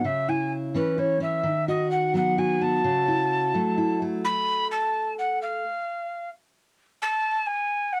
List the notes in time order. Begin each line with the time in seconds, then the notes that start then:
0.05 C#3 E5
0.28 E4 G#5
0.74 E3 C#4 B4
0.98 E4 C#5
1.20 C#4 E5
1.43 D#3
1.68 F#4 D#5
1.90 F#5
2.14 F#3 B3 F#5
2.38 F#4 G#5
2.61 B3 A5
2.84 C#3
3.08 E4
3.54 F#3 A3
3.78 E4
4.02 A3
4.24 B5
4.71 A5
5.18 F#5
5.42 F5
7.01 A5
7.46 G#5
7.92 F#5